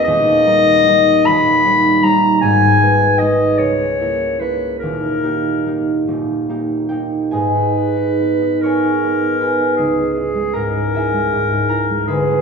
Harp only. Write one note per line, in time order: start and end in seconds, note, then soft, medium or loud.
0.00 0.46 A#4 medium
0.07 1.26 D#1 medium
0.07 1.27 D#2 medium
0.46 0.86 G3 soft
0.46 0.86 D#4 medium
0.46 0.86 A#4 medium
0.86 1.64 G3 medium
0.86 1.64 D#4 medium
0.86 2.45 A#4 medium
1.28 2.45 D#1 medium
1.28 2.45 D#2 medium
1.65 2.02 G3 soft
1.65 2.03 D#4 medium
1.65 2.03 C#5 medium
2.03 2.45 G3 soft
2.03 2.80 D#4 soft
2.03 2.45 C#5 medium
2.42 3.61 G#1 medium
2.42 3.62 G#2 medium
2.80 3.21 G#3 soft
2.80 3.20 D#4 soft
2.80 3.21 B4 soft
3.21 3.63 G#3 soft
3.21 3.63 D#4 soft
3.21 3.63 B4 soft
3.58 4.85 C#2 medium
3.58 4.85 C#3 soft
4.01 4.39 A#3 soft
4.01 4.40 E4 soft
4.01 4.40 A#4 soft
4.40 5.22 A#3 soft
4.40 4.85 E4 soft
4.40 7.35 A#4 soft
4.83 6.07 D#1 soft
4.83 6.06 D#2 medium
5.23 5.65 A#3 soft
5.23 5.66 D#4 soft
5.23 5.66 G4 soft
5.66 6.48 A#3 soft
5.66 6.48 D#4 soft
5.66 6.49 G4 soft
6.08 7.36 D#1 soft
6.08 7.35 D#2 soft
6.49 6.89 A#3 soft
6.49 6.90 D#4 soft
6.49 6.88 G4 soft
6.89 7.35 A#3 soft
6.89 7.53 D#4 soft
6.89 6.91 G4 soft
6.89 7.35 G4 soft
6.89 7.34 G5 medium
7.31 9.80 G#2 medium
7.31 7.76 G#4 medium
7.31 9.80 D#5 medium
7.31 8.63 G#5 medium
7.55 7.95 D#4 soft
7.77 8.64 G#4 soft
7.96 8.40 D#4 soft
8.20 9.03 B3 soft
8.42 8.83 D#4 soft
8.63 9.41 G#4 soft
8.63 12.13 C#5 medium
8.63 9.41 G#5 medium
8.63 9.93 C#6 medium
8.84 9.22 D#4 soft
9.05 12.42 B3 soft
9.23 9.59 D#4 soft
9.41 9.97 G#4 soft
9.41 12.09 B4 soft
9.41 10.93 G#5 soft
9.41 12.07 B5 medium
9.60 9.81 D#4 soft
9.79 12.12 C#2 soft
9.99 10.75 G#4 soft
10.16 10.95 E4 soft
10.35 11.12 G#3 soft
10.53 11.31 G#2 soft
10.53 11.69 A#4 medium
10.53 11.19 A#5 medium
10.76 10.94 G#4 soft
10.95 11.70 E4 soft
10.95 11.51 G#4 medium
10.95 12.13 E5 medium
10.95 12.08 G#5 medium
11.14 11.89 G#3 soft
11.33 12.12 G#2 soft
11.52 12.42 G#4 soft
11.69 12.12 E4 soft
11.69 12.12 A#4 medium
11.69 12.36 A#5 medium
11.91 12.42 G#3 soft
12.08 12.42 D2 medium
12.08 12.42 B4 medium
12.08 12.42 G#5 medium
12.08 12.42 B5 medium
12.31 12.42 D4 soft